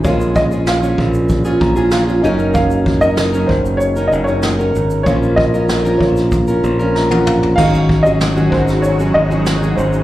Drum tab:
CC |----------------|----------------|----------------|x---------------|
SH |xxxxxx-xxx-xxxxx|xx-xxx-xxxxxxxxx|xx-xxx-xxxxx----|-x-xxx-xxx-xxxxx|
SD |----o-------o---|----o-------o---|----o--o----o---|----o--o----o---|
T1 |----------------|----------------|-------------o--|----------------|
T2 |----------------|----------------|--------------o-|----------------|
FT |----------------|----------------|---------------o|----------------|
BD |o-o---o-o-o-----|o-o---o---------|o-o---o-o-------|o-o---o---------|